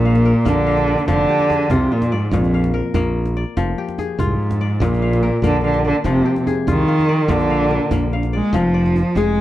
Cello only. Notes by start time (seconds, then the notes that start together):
Already playing: A#2
0.48 D3
1.10 D3
1.71 C3
1.93 A#2
2.13 G#2
2.34 F2
4.21 G#2
4.82 A#2
5.46 D3
5.65 D3
5.87 D3
6.07 C3
6.69 D#3
7.30 D3
8.35 G#3
8.56 F3
9.16 G#3